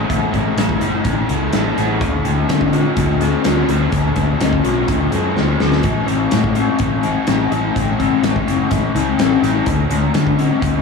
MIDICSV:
0, 0, Header, 1, 4, 480
1, 0, Start_track
1, 0, Key_signature, 2, "major"
1, 0, Tempo, 478088
1, 100, Time_signature, 4, 2, 24, 8
1, 10862, End_track
2, 0, Start_track
2, 0, Title_t, "Overdriven electric guitar"
2, 0, Program_c, 0, 29
2, 0, Note_on_c, 0, 59, 65
2, 0, Note_on_c, 0, 64, 68
2, 0, Note_on_c, 0, 69, 61
2, 83, Note_on_c, 0, 57, 62
2, 309, Note_off_c, 0, 59, 0
2, 321, Note_on_c, 0, 59, 62
2, 564, Note_off_c, 0, 59, 0
2, 576, Note_on_c, 0, 59, 65
2, 805, Note_off_c, 0, 64, 0
2, 817, Note_on_c, 0, 64, 65
2, 1037, Note_off_c, 0, 59, 0
2, 1049, Note_on_c, 0, 59, 66
2, 1079, Note_off_c, 0, 69, 0
2, 1301, Note_on_c, 0, 69, 65
2, 1529, Note_off_c, 0, 64, 0
2, 1541, Note_on_c, 0, 64, 68
2, 1775, Note_off_c, 0, 69, 0
2, 1779, Note_on_c, 0, 69, 62
2, 2016, Note_off_c, 0, 59, 0
2, 2022, Note_off_c, 0, 64, 0
2, 2035, Note_on_c, 0, 50, 69
2, 2250, Note_off_c, 0, 57, 0
2, 2254, Note_on_c, 0, 57, 59
2, 2486, Note_on_c, 0, 61, 69
2, 2741, Note_on_c, 0, 66, 66
2, 2984, Note_off_c, 0, 61, 0
2, 2988, Note_on_c, 0, 61, 64
2, 3224, Note_off_c, 0, 69, 0
2, 3228, Note_on_c, 0, 69, 64
2, 3229, Note_off_c, 0, 50, 0
2, 3449, Note_off_c, 0, 66, 0
2, 3461, Note_on_c, 0, 66, 65
2, 3707, Note_off_c, 0, 69, 0
2, 3711, Note_on_c, 0, 69, 64
2, 3941, Note_on_c, 0, 50, 67
2, 4173, Note_off_c, 0, 57, 0
2, 4177, Note_on_c, 0, 57, 61
2, 4402, Note_off_c, 0, 61, 0
2, 4406, Note_on_c, 0, 61, 64
2, 4643, Note_off_c, 0, 66, 0
2, 4655, Note_on_c, 0, 66, 66
2, 4894, Note_off_c, 0, 61, 0
2, 4898, Note_on_c, 0, 61, 66
2, 5131, Note_off_c, 0, 69, 0
2, 5135, Note_on_c, 0, 69, 66
2, 5143, Note_off_c, 0, 50, 0
2, 5371, Note_off_c, 0, 66, 0
2, 5383, Note_on_c, 0, 66, 66
2, 5615, Note_off_c, 0, 69, 0
2, 5619, Note_on_c, 0, 69, 62
2, 5856, Note_off_c, 0, 57, 0
2, 5860, Note_on_c, 0, 57, 64
2, 5864, Note_off_c, 0, 66, 0
2, 6079, Note_off_c, 0, 61, 0
2, 6083, Note_on_c, 0, 61, 62
2, 6328, Note_off_c, 0, 57, 0
2, 6332, Note_on_c, 0, 57, 69
2, 6572, Note_off_c, 0, 61, 0
2, 6576, Note_on_c, 0, 61, 64
2, 6819, Note_off_c, 0, 57, 0
2, 6823, Note_on_c, 0, 57, 65
2, 7060, Note_on_c, 0, 64, 63
2, 7308, Note_off_c, 0, 61, 0
2, 7312, Note_on_c, 0, 61, 64
2, 7536, Note_off_c, 0, 64, 0
2, 7548, Note_on_c, 0, 64, 65
2, 7764, Note_off_c, 0, 57, 0
2, 7768, Note_on_c, 0, 57, 64
2, 8017, Note_off_c, 0, 61, 0
2, 8021, Note_on_c, 0, 61, 61
2, 8259, Note_off_c, 0, 57, 0
2, 8263, Note_on_c, 0, 57, 69
2, 8496, Note_off_c, 0, 61, 0
2, 8500, Note_on_c, 0, 61, 66
2, 8732, Note_off_c, 0, 57, 0
2, 8737, Note_on_c, 0, 57, 68
2, 8746, Note_off_c, 0, 64, 0
2, 8981, Note_on_c, 0, 64, 66
2, 9133, Note_off_c, 0, 69, 0
2, 9214, Note_off_c, 0, 61, 0
2, 9218, Note_on_c, 0, 61, 68
2, 9455, Note_off_c, 0, 64, 0
2, 9467, Note_on_c, 0, 64, 66
2, 9704, Note_off_c, 0, 64, 0
2, 9708, Note_on_c, 0, 50, 71
2, 9738, Note_off_c, 0, 61, 0
2, 9939, Note_off_c, 0, 57, 0
2, 9943, Note_on_c, 0, 57, 64
2, 10180, Note_off_c, 0, 57, 0
2, 10184, Note_on_c, 0, 57, 66
2, 10421, Note_on_c, 0, 61, 68
2, 10645, Note_off_c, 0, 57, 0
2, 10649, Note_on_c, 0, 57, 67
2, 10862, Note_off_c, 0, 50, 0
2, 10862, Note_off_c, 0, 57, 0
2, 10862, Note_off_c, 0, 61, 0
2, 10862, End_track
3, 0, Start_track
3, 0, Title_t, "Fingered electric bass"
3, 0, Program_c, 1, 33
3, 103, Note_on_c, 1, 33, 89
3, 279, Note_off_c, 1, 33, 0
3, 342, Note_on_c, 1, 33, 80
3, 519, Note_off_c, 1, 33, 0
3, 573, Note_on_c, 1, 33, 83
3, 754, Note_off_c, 1, 33, 0
3, 819, Note_on_c, 1, 30, 83
3, 997, Note_off_c, 1, 30, 0
3, 1053, Note_on_c, 1, 33, 88
3, 1233, Note_off_c, 1, 33, 0
3, 1302, Note_on_c, 1, 37, 82
3, 1479, Note_off_c, 1, 37, 0
3, 1539, Note_on_c, 1, 33, 81
3, 1717, Note_off_c, 1, 33, 0
3, 1785, Note_on_c, 1, 33, 79
3, 2014, Note_off_c, 1, 33, 0
3, 2014, Note_on_c, 1, 38, 84
3, 2194, Note_off_c, 1, 38, 0
3, 2263, Note_on_c, 1, 38, 79
3, 2440, Note_off_c, 1, 38, 0
3, 2501, Note_on_c, 1, 50, 86
3, 2856, Note_off_c, 1, 50, 0
3, 2985, Note_on_c, 1, 38, 87
3, 3339, Note_off_c, 1, 38, 0
3, 3464, Note_on_c, 1, 38, 81
3, 3641, Note_off_c, 1, 38, 0
3, 3700, Note_on_c, 1, 38, 78
3, 3879, Note_off_c, 1, 38, 0
3, 3940, Note_on_c, 1, 38, 82
3, 4118, Note_off_c, 1, 38, 0
3, 4182, Note_on_c, 1, 38, 81
3, 4360, Note_off_c, 1, 38, 0
3, 4436, Note_on_c, 1, 38, 84
3, 4609, Note_off_c, 1, 38, 0
3, 4672, Note_on_c, 1, 35, 84
3, 4846, Note_off_c, 1, 35, 0
3, 4907, Note_on_c, 1, 38, 84
3, 5083, Note_off_c, 1, 38, 0
3, 5157, Note_on_c, 1, 42, 84
3, 5330, Note_off_c, 1, 42, 0
3, 5400, Note_on_c, 1, 38, 78
3, 5572, Note_off_c, 1, 38, 0
3, 5643, Note_on_c, 1, 38, 78
3, 5813, Note_off_c, 1, 38, 0
3, 5864, Note_on_c, 1, 33, 84
3, 6042, Note_off_c, 1, 33, 0
3, 6120, Note_on_c, 1, 33, 82
3, 6291, Note_off_c, 1, 33, 0
3, 6356, Note_on_c, 1, 45, 83
3, 6706, Note_off_c, 1, 45, 0
3, 6825, Note_on_c, 1, 33, 84
3, 7180, Note_off_c, 1, 33, 0
3, 7317, Note_on_c, 1, 33, 79
3, 7490, Note_off_c, 1, 33, 0
3, 7549, Note_on_c, 1, 33, 78
3, 7725, Note_off_c, 1, 33, 0
3, 7790, Note_on_c, 1, 33, 82
3, 7965, Note_off_c, 1, 33, 0
3, 8035, Note_on_c, 1, 33, 81
3, 8208, Note_off_c, 1, 33, 0
3, 8265, Note_on_c, 1, 33, 90
3, 8442, Note_off_c, 1, 33, 0
3, 8514, Note_on_c, 1, 30, 84
3, 8687, Note_off_c, 1, 30, 0
3, 8751, Note_on_c, 1, 33, 84
3, 8926, Note_off_c, 1, 33, 0
3, 8984, Note_on_c, 1, 37, 87
3, 9161, Note_off_c, 1, 37, 0
3, 9215, Note_on_c, 1, 33, 85
3, 9395, Note_off_c, 1, 33, 0
3, 9461, Note_on_c, 1, 33, 84
3, 9639, Note_off_c, 1, 33, 0
3, 9707, Note_on_c, 1, 38, 85
3, 9882, Note_off_c, 1, 38, 0
3, 9953, Note_on_c, 1, 38, 89
3, 10126, Note_off_c, 1, 38, 0
3, 10185, Note_on_c, 1, 50, 85
3, 10537, Note_off_c, 1, 50, 0
3, 10663, Note_on_c, 1, 38, 92
3, 10862, Note_off_c, 1, 38, 0
3, 10862, End_track
4, 0, Start_track
4, 0, Title_t, "Drums"
4, 99, Note_on_c, 9, 36, 99
4, 102, Note_on_c, 9, 42, 82
4, 200, Note_off_c, 9, 36, 0
4, 202, Note_off_c, 9, 42, 0
4, 339, Note_on_c, 9, 36, 73
4, 341, Note_on_c, 9, 42, 64
4, 439, Note_off_c, 9, 36, 0
4, 441, Note_off_c, 9, 42, 0
4, 578, Note_on_c, 9, 42, 87
4, 585, Note_on_c, 9, 38, 100
4, 679, Note_off_c, 9, 42, 0
4, 686, Note_off_c, 9, 38, 0
4, 695, Note_on_c, 9, 36, 77
4, 796, Note_off_c, 9, 36, 0
4, 814, Note_on_c, 9, 42, 63
4, 914, Note_off_c, 9, 42, 0
4, 1051, Note_on_c, 9, 42, 90
4, 1055, Note_on_c, 9, 36, 103
4, 1151, Note_off_c, 9, 42, 0
4, 1155, Note_off_c, 9, 36, 0
4, 1297, Note_on_c, 9, 42, 64
4, 1397, Note_off_c, 9, 42, 0
4, 1532, Note_on_c, 9, 42, 88
4, 1539, Note_on_c, 9, 38, 107
4, 1633, Note_off_c, 9, 42, 0
4, 1640, Note_off_c, 9, 38, 0
4, 1785, Note_on_c, 9, 42, 60
4, 1792, Note_on_c, 9, 38, 30
4, 1885, Note_off_c, 9, 42, 0
4, 1892, Note_off_c, 9, 38, 0
4, 2018, Note_on_c, 9, 36, 95
4, 2018, Note_on_c, 9, 42, 75
4, 2118, Note_off_c, 9, 42, 0
4, 2119, Note_off_c, 9, 36, 0
4, 2260, Note_on_c, 9, 42, 61
4, 2360, Note_off_c, 9, 42, 0
4, 2503, Note_on_c, 9, 42, 77
4, 2510, Note_on_c, 9, 38, 99
4, 2603, Note_off_c, 9, 42, 0
4, 2610, Note_off_c, 9, 38, 0
4, 2620, Note_on_c, 9, 36, 75
4, 2721, Note_off_c, 9, 36, 0
4, 2740, Note_on_c, 9, 42, 61
4, 2841, Note_off_c, 9, 42, 0
4, 2978, Note_on_c, 9, 42, 86
4, 2981, Note_on_c, 9, 36, 109
4, 3079, Note_off_c, 9, 42, 0
4, 3081, Note_off_c, 9, 36, 0
4, 3221, Note_on_c, 9, 42, 62
4, 3321, Note_off_c, 9, 42, 0
4, 3457, Note_on_c, 9, 42, 88
4, 3465, Note_on_c, 9, 38, 106
4, 3558, Note_off_c, 9, 42, 0
4, 3565, Note_off_c, 9, 38, 0
4, 3702, Note_on_c, 9, 42, 60
4, 3802, Note_off_c, 9, 42, 0
4, 3938, Note_on_c, 9, 42, 81
4, 3941, Note_on_c, 9, 36, 99
4, 4038, Note_off_c, 9, 42, 0
4, 4042, Note_off_c, 9, 36, 0
4, 4174, Note_on_c, 9, 42, 61
4, 4181, Note_on_c, 9, 36, 72
4, 4274, Note_off_c, 9, 42, 0
4, 4282, Note_off_c, 9, 36, 0
4, 4423, Note_on_c, 9, 42, 89
4, 4430, Note_on_c, 9, 38, 106
4, 4523, Note_off_c, 9, 42, 0
4, 4530, Note_off_c, 9, 38, 0
4, 4545, Note_on_c, 9, 36, 75
4, 4645, Note_off_c, 9, 36, 0
4, 4664, Note_on_c, 9, 42, 68
4, 4764, Note_off_c, 9, 42, 0
4, 4901, Note_on_c, 9, 42, 91
4, 4904, Note_on_c, 9, 36, 101
4, 5001, Note_off_c, 9, 42, 0
4, 5004, Note_off_c, 9, 36, 0
4, 5141, Note_on_c, 9, 42, 68
4, 5241, Note_off_c, 9, 42, 0
4, 5389, Note_on_c, 9, 38, 58
4, 5490, Note_off_c, 9, 38, 0
4, 5626, Note_on_c, 9, 38, 80
4, 5726, Note_off_c, 9, 38, 0
4, 5743, Note_on_c, 9, 38, 78
4, 5843, Note_off_c, 9, 38, 0
4, 5855, Note_on_c, 9, 42, 81
4, 5863, Note_on_c, 9, 36, 97
4, 5955, Note_off_c, 9, 42, 0
4, 5963, Note_off_c, 9, 36, 0
4, 6104, Note_on_c, 9, 42, 62
4, 6205, Note_off_c, 9, 42, 0
4, 6338, Note_on_c, 9, 42, 82
4, 6345, Note_on_c, 9, 38, 100
4, 6438, Note_off_c, 9, 42, 0
4, 6445, Note_off_c, 9, 38, 0
4, 6465, Note_on_c, 9, 36, 77
4, 6566, Note_off_c, 9, 36, 0
4, 6578, Note_on_c, 9, 42, 59
4, 6679, Note_off_c, 9, 42, 0
4, 6813, Note_on_c, 9, 42, 82
4, 6826, Note_on_c, 9, 36, 107
4, 6914, Note_off_c, 9, 42, 0
4, 6926, Note_off_c, 9, 36, 0
4, 7061, Note_on_c, 9, 42, 61
4, 7161, Note_off_c, 9, 42, 0
4, 7298, Note_on_c, 9, 42, 86
4, 7305, Note_on_c, 9, 38, 105
4, 7399, Note_off_c, 9, 42, 0
4, 7406, Note_off_c, 9, 38, 0
4, 7548, Note_on_c, 9, 42, 55
4, 7649, Note_off_c, 9, 42, 0
4, 7792, Note_on_c, 9, 36, 99
4, 7792, Note_on_c, 9, 42, 82
4, 7892, Note_off_c, 9, 36, 0
4, 7892, Note_off_c, 9, 42, 0
4, 8030, Note_on_c, 9, 36, 73
4, 8032, Note_on_c, 9, 42, 61
4, 8131, Note_off_c, 9, 36, 0
4, 8133, Note_off_c, 9, 42, 0
4, 8268, Note_on_c, 9, 42, 86
4, 8275, Note_on_c, 9, 38, 99
4, 8369, Note_off_c, 9, 42, 0
4, 8376, Note_off_c, 9, 38, 0
4, 8393, Note_on_c, 9, 36, 77
4, 8494, Note_off_c, 9, 36, 0
4, 8515, Note_on_c, 9, 42, 66
4, 8615, Note_off_c, 9, 42, 0
4, 8743, Note_on_c, 9, 42, 93
4, 8750, Note_on_c, 9, 36, 102
4, 8844, Note_off_c, 9, 42, 0
4, 8850, Note_off_c, 9, 36, 0
4, 8993, Note_on_c, 9, 42, 70
4, 9093, Note_off_c, 9, 42, 0
4, 9227, Note_on_c, 9, 42, 92
4, 9234, Note_on_c, 9, 38, 114
4, 9327, Note_off_c, 9, 42, 0
4, 9334, Note_off_c, 9, 38, 0
4, 9475, Note_on_c, 9, 42, 64
4, 9482, Note_on_c, 9, 38, 28
4, 9575, Note_off_c, 9, 42, 0
4, 9582, Note_off_c, 9, 38, 0
4, 9702, Note_on_c, 9, 42, 86
4, 9706, Note_on_c, 9, 36, 99
4, 9802, Note_off_c, 9, 42, 0
4, 9806, Note_off_c, 9, 36, 0
4, 9944, Note_on_c, 9, 42, 68
4, 10045, Note_off_c, 9, 42, 0
4, 10183, Note_on_c, 9, 42, 83
4, 10190, Note_on_c, 9, 38, 103
4, 10283, Note_off_c, 9, 42, 0
4, 10290, Note_off_c, 9, 38, 0
4, 10308, Note_on_c, 9, 36, 77
4, 10408, Note_off_c, 9, 36, 0
4, 10430, Note_on_c, 9, 42, 62
4, 10530, Note_off_c, 9, 42, 0
4, 10665, Note_on_c, 9, 42, 88
4, 10666, Note_on_c, 9, 36, 106
4, 10766, Note_off_c, 9, 36, 0
4, 10766, Note_off_c, 9, 42, 0
4, 10862, End_track
0, 0, End_of_file